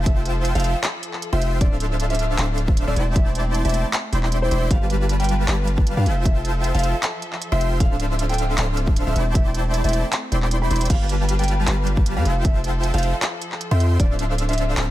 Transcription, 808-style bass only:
0.00 0.53 F1 loud
0.55 0.75 F1 loud
1.33 1.62 F1 loud
1.61 2.37 D1 loud
2.38 2.85 D1 medium
2.87 2.95 D1 medium
2.96 3.63 E1 loud
3.65 3.84 E1 loud
4.13 4.50 E1 loud
4.51 4.69 E1 loud
4.71 5.46 G1 loud
5.48 5.95 G1 loud
5.97 6.08 G2 loud
6.06 6.72 F1 loud
6.75 6.94 F1 loud
7.52 7.82 F1 loud
7.80 8.56 D1 loud
8.58 9.05 D1 medium
9.07 9.14 D1 loud
9.16 9.82 E1 loud
9.84 10.04 E1 loud
10.32 10.69 E1 medium
10.71 10.88 E1 loud
10.90 11.66 G1 loud
11.67 12.18 G1 loud
12.16 12.24 G2 medium
12.25 12.92 F1 loud
12.94 13.13 F1 loud
13.71 13.98 F2 loud
14.00 14.75 D1 loud
14.77 14.91 D1 loud

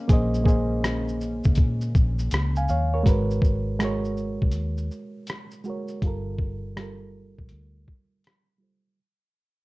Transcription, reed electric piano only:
0.08 0.43 A#3 medium
0.08 0.45 G#4 medium
0.08 0.46 C5 medium
0.13 0.47 D#5 loud
0.44 1.87 A#3 medium
0.44 1.88 G#4 medium
0.44 1.89 C5 medium
0.49 1.90 D#5 medium
2.57 2.68 F5 medium
2.57 2.69 G#5 medium
2.70 2.93 C#5 medium
2.70 2.92 F5 medium
2.94 3.06 A#4 medium
2.94 3.28 C#5 medium
3.03 3.75 G#3 medium
3.03 3.76 F#4 medium
3.03 3.77 A#4 medium
3.09 3.78 B4 medium
3.79 5.21 G#3 medium
3.79 5.22 F#4 medium
3.79 5.23 A#4 medium
3.85 5.24 C#5 loud
5.64 6.00 G#3 medium
5.64 6.01 F#4 medium
5.64 6.02 A#4 medium
5.70 6.03 C#5 medium
6.02 6.73 G3 medium
6.02 6.74 F4 medium
6.02 6.75 A4 medium
6.07 6.76 A#4 medium
6.76 8.18 G3 medium
6.76 8.19 F4 medium
6.80 8.20 A4 medium
6.80 8.21 A#4 medium
8.58 8.95 G3 medium
8.58 8.96 F4 medium
8.58 8.97 A4 medium
8.63 8.98 C5 medium

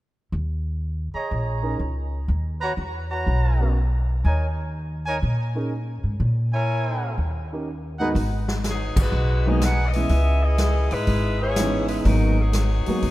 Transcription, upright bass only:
0.32 1.10 D#2 medium
1.14 muted upright bass stroke soft
1.31 1.77 A#1 medium
1.79 2.25 C#2 medium
2.28 2.74 D#2 medium
2.77 3.23 E2 medium
3.27 4.21 B1 medium
4.25 5.18 D#2 medium
5.22 6.00 A#2 medium
6.03 6.19 G#2 soft
6.20 7.14 A#2 medium
7.18 8.11 D#2 medium
8.15 8.92 G#1 medium
8.97 9.12 G1 medium
9.12 10.06 B1 medium
10.10 10.87 C#2 medium
10.92 11.07 G#2 medium
11.07 12.01 G#1 medium
12.05 12.83 G#1 medium
12.88 muted upright bass stroke soft
13.02 13.11 D#2 medium

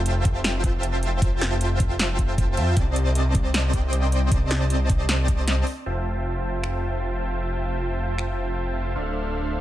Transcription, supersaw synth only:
0.00 0.62 F4 loud
0.00 0.62 C5 medium
0.00 0.62 E5 loud
0.00 0.62 G5 medium
0.00 0.62 A5 loud
0.64 1.20 F4 loud
0.64 1.20 C5 medium
0.64 1.20 E5 medium
0.64 1.20 G5 medium
0.64 1.20 A5 loud
1.22 2.55 F4 loud
1.22 2.55 C5 medium
1.22 2.55 E5 medium
1.22 2.55 G5 medium
1.22 2.55 A5 loud
2.57 2.74 F4 medium
2.57 2.74 C5 medium
2.57 2.74 E5 medium
2.57 2.74 G5 medium
2.57 2.74 A5 loud
2.77 3.71 C4 loud
2.77 3.71 D5 loud
2.77 3.71 D#5 medium
2.77 3.71 A5 loud
3.73 4.29 C4 medium
3.73 4.29 C5 medium
3.73 4.29 D5 medium
3.73 4.29 D#5 medium
3.73 4.29 G5 loud
4.31 5.65 C4 loud
4.31 5.65 C5 medium
4.31 5.65 D5 medium
4.31 5.65 D#5 medium
4.31 5.65 A5 loud
5.86 8.94 F4 medium
5.86 8.94 C5 medium
5.86 8.94 E5 medium
5.86 8.94 G5 medium
5.86 8.94 A5 medium
8.96 9.61 D4 medium
8.96 9.61 A4 medium
8.96 9.61 C5 medium
8.96 9.61 E5 medium
8.96 9.61 F5 medium

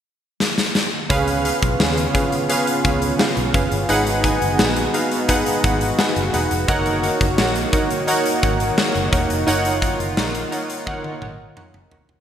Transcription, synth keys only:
1.10 2.11 C#3 medium
1.10 1.33 C#4 loud
1.10 1.33 G#4 loud
1.10 1.33 B4 loud
1.10 1.33 F5 loud
1.44 1.68 C#4 medium
1.44 1.68 G#4 medium
1.44 1.68 B4 medium
1.44 1.68 F5 loud
1.79 2.03 C#4 medium
1.79 2.03 G#4 medium
1.79 2.03 B4 medium
1.79 2.03 F5 medium
2.14 2.38 C#4 medium
2.14 2.38 G#4 medium
2.14 2.38 B4 medium
2.14 2.38 F5 medium
2.49 2.72 C#4 loud
2.49 2.73 G#4 loud
2.49 2.73 B4 medium
2.49 2.73 F5 loud
2.84 3.07 C#4 medium
2.84 3.08 G#4 medium
2.84 3.08 B4 medium
2.84 3.08 F5 medium
3.19 3.42 C#4 medium
3.19 3.42 G#4 medium
3.19 3.43 B4 medium
3.19 3.43 F5 medium
3.54 3.77 C#4 medium
3.54 3.77 G#4 medium
3.54 3.77 B4 medium
3.54 3.78 F5 medium
3.89 4.90 G#2 medium
3.89 4.12 D#4 loud
3.89 4.12 G#4 loud
3.89 4.12 B4 loud
3.89 4.13 F#5 loud
4.24 4.47 D#4 medium
4.24 4.47 G#4 medium
4.24 4.47 B4 medium
4.24 4.47 G#5 medium
4.59 4.82 D#4 medium
4.59 4.82 G#4 medium
4.59 4.82 B4 medium
4.59 4.82 F#5 medium
4.93 5.17 D#4 medium
4.93 5.17 G#4 medium
4.93 5.17 B4 medium
4.93 5.17 F5 medium
5.28 5.52 D#4 loud
5.28 5.52 G#4 loud
5.28 5.52 B4 loud
5.28 5.52 F#5 loud
5.63 5.87 D#4 medium
5.63 5.87 G#4 medium
5.63 5.87 B4 medium
5.63 5.87 F#5 loud
5.98 6.21 D#4 medium
5.98 6.22 G#4 medium
5.98 6.22 B4 medium
5.98 6.22 F#5 medium
6.33 6.56 D#4 medium
6.33 6.56 G#4 medium
6.33 6.57 B4 medium
6.33 6.57 F#5 medium
6.68 6.91 D#4 loud
6.68 6.91 A#4 loud
6.68 6.92 C#5 loud
6.68 6.92 F#5 loud
7.03 7.26 D#4 medium
7.03 7.26 A#4 medium
7.03 7.26 C#5 medium
7.03 7.27 F#5 medium
7.38 7.61 D#4 medium
7.38 7.61 A#4 medium
7.38 7.61 C#5 medium
7.38 7.61 F#5 medium
7.72 7.96 D#4 medium
7.72 7.96 A#4 medium
7.72 7.96 C#5 medium
7.72 7.96 F#5 loud
8.07 8.31 D#4 loud
8.07 8.31 A#4 loud
8.07 8.31 C#5 medium
8.07 8.31 F#5 loud
8.42 8.66 D#4 medium
8.42 8.66 A#4 medium
8.42 8.66 C#5 medium
8.42 8.66 F#5 loud
8.77 9.00 D#4 medium
8.77 9.01 A#4 medium
8.77 9.01 C#5 medium
8.77 9.01 F#5 medium
9.12 9.35 D#4 medium
9.12 9.35 A#4 medium
9.12 9.36 C#5 medium
9.12 9.36 F#5 medium
9.47 9.70 D#4 loud
9.47 9.70 A#4 loud
9.47 9.71 C#5 loud
9.47 9.71 F#5 loud
9.82 10.05 D#4 medium
9.82 10.05 A#4 medium
9.82 10.05 C#5 medium
9.82 10.06 F#5 medium
10.17 10.40 D#4 medium
10.17 10.40 A#4 medium
10.17 10.40 C#5 medium
10.17 10.40 F#5 medium
10.51 10.75 D#4 medium
10.51 10.75 A#4 medium
10.51 10.75 C#5 medium
10.51 10.75 F#5 medium
10.86 11.10 D#4 loud
10.86 11.10 A#4 medium
10.86 11.10 C#5 medium
10.86 11.10 F#5 loud
11.21 11.44 D#4 medium
11.21 11.45 A#4 medium
11.21 11.45 C#5 medium
11.21 11.45 F#5 medium
11.56 11.79 D#4 medium
11.56 11.80 A#4 medium
11.56 11.80 C#5 medium
11.56 11.80 F#5 medium
11.91 12.14 D#4 medium
11.91 12.14 A#4 medium
11.91 12.15 C#5 medium
11.91 12.15 F#5 medium

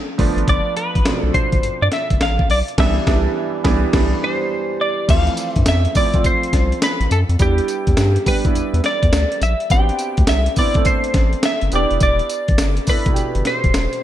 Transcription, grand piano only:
0.00 0.18 F3 medium
0.00 0.19 A3 medium
0.00 0.21 C4 medium
0.00 0.20 E4 medium
0.18 0.91 F3 loud
0.18 0.91 A3 medium
0.18 0.92 B3 medium
0.18 0.92 D4 loud
1.06 1.91 B2 medium
1.06 1.90 F3 medium
1.06 1.91 A3 medium
1.06 1.14 C4 medium
1.13 1.94 D4 medium
2.78 2.99 E3 loud
2.78 2.99 G3 loud
2.78 2.99 B3 loud
2.78 3.00 D4 loud
3.07 3.28 E3 loud
3.07 3.28 G3 loud
3.07 3.28 B3 loud
3.07 3.29 D4 loud
3.64 3.85 E3 loud
3.64 3.86 G3 loud
3.64 3.86 B3 loud
3.64 3.86 D4 loud
3.93 4.14 E3 medium
3.93 4.15 G3 loud
3.93 4.15 B3 loud
3.93 4.15 D4 loud
5.08 5.74 E3 medium
5.08 5.73 F3 medium
5.08 5.73 A3 medium
5.08 5.74 C4 medium
5.95 6.09 F3 medium
5.95 6.09 A3 medium
5.95 6.09 C4 medium
5.95 6.10 E4 medium
6.13 6.97 F3 medium
6.13 6.98 A3 medium
6.13 6.98 C4 medium
6.13 6.98 F4 medium
7.39 8.04 G3 medium
7.39 8.05 B3 medium
7.39 8.05 D4 medium
7.39 8.05 E4 medium
8.26 8.40 G3 medium
8.26 8.40 B3 medium
8.26 8.40 D4 medium
8.26 8.40 G4 medium
8.45 9.28 G3 medium
8.45 9.29 B3 medium
8.45 9.29 D4 medium
8.45 9.29 E4 medium
9.70 10.35 B3 medium
9.70 10.35 C4 medium
9.70 10.36 D4 medium
9.70 9.79 F#4 medium
9.78 10.39 G4 medium
10.57 10.71 B3 medium
10.57 10.71 C4 medium
10.57 10.71 D4 medium
10.57 10.71 E4 medium
10.75 11.59 A3 medium
10.75 11.59 C4 medium
10.75 11.60 D4 medium
10.75 11.60 A4 medium
11.73 12.67 B3 medium
11.73 12.67 D4 medium
11.73 12.67 E4 medium
11.73 12.67 G4 medium
12.88 13.01 B3 medium
12.88 13.02 D4 medium
12.88 13.02 E4 medium
12.88 13.02 A4 medium
13.06 13.90 B2 medium
13.06 13.90 D4 medium
13.06 13.90 E4 medium
13.06 13.12 F#4 medium
13.14 13.94 G4 medium

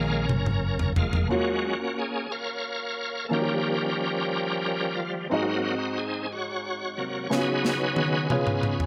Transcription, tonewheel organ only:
0.00 0.25 G#3 medium
0.00 0.26 A#3 medium
0.00 0.92 C#4 medium
0.00 0.93 A#4 loud
0.00 0.26 F5 medium
0.97 1.27 G#3 soft
0.97 1.27 A#3 soft
0.97 1.12 F4 medium
0.97 1.28 F5 medium
1.31 1.75 F#3 medium
1.31 1.75 G#3 soft
1.31 2.27 A#3 medium
1.31 2.27 C#4 medium
1.31 1.99 F#4 medium
1.99 2.32 G#4 loud
2.32 3.27 A#4 medium
2.32 3.27 C#5 loud
2.32 3.27 F5 medium
3.25 3.31 A4 medium
3.32 5.27 F3 medium
3.32 5.28 G3 medium
3.32 4.95 C#4 medium
3.32 4.94 G4 medium
3.32 5.03 A#4 loud
4.97 5.12 F4 medium
5.31 5.75 F#3 medium
5.31 5.75 A#3 medium
5.31 6.27 C4 medium
5.31 6.27 D#4 medium
5.31 5.99 F#4 loud
5.98 6.32 G#4 medium
6.32 7.27 F#4 medium
6.32 7.34 C#5 loud
6.97 7.27 C3 medium
6.97 7.27 F#3 medium
6.97 7.27 A#3 soft
7.32 8.27 F#3 medium
7.32 8.28 B3 medium
7.32 8.86 C#4 medium
7.32 8.28 D#4 medium
7.32 8.86 G#4 medium
7.32 8.86 B4 loud
8.30 8.75 B3 soft
8.30 8.75 D#4 medium
8.30 8.74 F4 medium

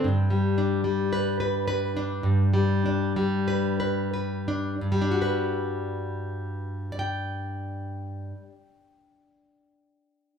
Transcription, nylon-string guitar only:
0.00 0.57 D4 medium
0.04 2.22 G2 medium
0.30 0.83 G3 soft
0.58 1.95 D4 medium
0.84 2.52 G3 medium
1.13 1.39 B4 medium
1.40 1.66 B4 medium
1.68 3.46 B4 medium
1.97 2.84 D4 medium
2.23 4.80 G2 medium
2.54 3.15 G3 medium
2.86 4.47 D4 medium
3.16 4.91 G3 medium
3.48 3.79 B4 medium
3.80 4.12 B4 medium
4.14 4.74 B4 medium
4.48 4.74 D4 medium
4.81 8.31 G2 medium
4.92 8.42 G3 medium
5.01 8.51 D4 medium
5.11 6.92 F#4 medium
5.22 6.99 B4 soft
6.92 10.32 D5 medium
6.99 10.38 G5 medium

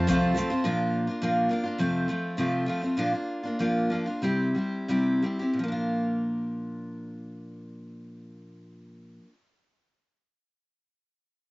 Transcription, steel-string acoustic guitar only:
0.07 0.36 F2 loud
0.07 0.36 C3 medium
0.07 0.33 F3 medium
0.07 0.35 A3 loud
0.07 0.36 C4 loud
0.07 0.37 F4 loud
0.35 0.50 F3 medium
0.35 0.50 A3 medium
0.35 0.50 C4 medium
0.35 0.49 F4 medium
0.50 0.64 F3 soft
0.50 0.65 A3 medium
0.50 0.65 C4 medium
0.50 0.65 F4 medium
0.64 1.07 A#2 medium
0.64 1.07 F3 medium
0.64 1.08 A#3 medium
0.64 1.08 D4 medium
0.64 1.06 F4 medium
1.07 1.22 A#3 soft
1.07 1.22 D4 soft
1.07 1.22 F4 medium
1.22 1.50 A#2 medium
1.22 1.48 F3 medium
1.22 1.49 A#3 medium
1.22 1.50 D4 medium
1.22 1.51 F4 medium
1.49 1.64 F3 medium
1.49 1.65 A#3 medium
1.49 1.64 D4 medium
1.49 1.62 F4 medium
1.64 1.80 A#3 soft
1.64 1.80 D4 soft
1.64 1.79 F4 medium
1.78 2.08 F2 medium
1.78 2.08 C3 medium
1.78 2.07 F3 medium
1.78 2.08 A3 medium
1.78 2.09 C4 medium
1.78 2.09 F4 medium
2.08 2.37 F3 medium
2.08 2.38 A3 medium
2.08 2.38 C4 medium
2.08 2.39 F4 medium
2.37 2.67 F2 medium
2.37 2.68 C3 medium
2.37 2.65 F3 medium
2.37 2.67 A3 medium
2.37 2.68 C4 medium
2.37 2.69 F4 medium
2.66 2.82 F3 medium
2.66 2.83 A3 soft
2.66 2.82 C4 medium
2.66 2.80 F4 medium
2.82 2.97 F3 soft
2.82 2.98 A3 soft
2.82 2.98 C4 soft
2.82 2.97 F4 soft
2.97 3.13 A#2 medium
2.97 3.13 F3 medium
2.97 3.13 A#3 medium
2.97 3.13 D4 medium
2.97 3.11 F4 medium
3.12 3.45 A#3 soft
3.12 3.42 F4 soft
3.43 3.59 A#3 soft
3.43 3.59 D4 soft
3.43 3.59 F4 soft
3.59 3.91 A#2 medium
3.59 3.89 F3 medium
3.59 3.90 A#3 medium
3.59 3.92 D4 medium
3.59 3.92 F4 medium
3.90 4.07 F3 medium
3.90 4.07 A#3 medium
3.90 4.06 D4 medium
3.90 4.05 F4 medium
4.06 4.23 A#3 soft
4.06 4.23 D4 soft
4.06 4.23 F4 soft
4.22 4.55 C3 medium
4.22 4.53 G3 medium
4.22 4.55 C4 medium
4.22 4.56 E4 medium
4.22 4.57 G4 medium
4.55 4.88 G3 soft
4.55 4.89 C4 soft
4.55 4.89 E4 soft
4.55 4.89 G4 soft
4.88 5.23 C3 medium
4.88 5.21 G3 medium
4.88 5.23 C4 medium
4.88 5.24 E4 medium
4.88 5.24 G4 medium
5.22 5.41 G3 soft
5.22 5.41 C4 soft
5.22 5.40 E4 soft
5.22 5.38 G4 medium
5.39 5.60 C4 soft
5.39 5.59 E4 soft
5.39 5.58 G4 soft
5.54 9.18 A#2 medium
5.59 9.24 F3 medium
5.63 9.28 A#3 medium
5.68 9.33 D4 medium
5.68 9.37 F4 medium

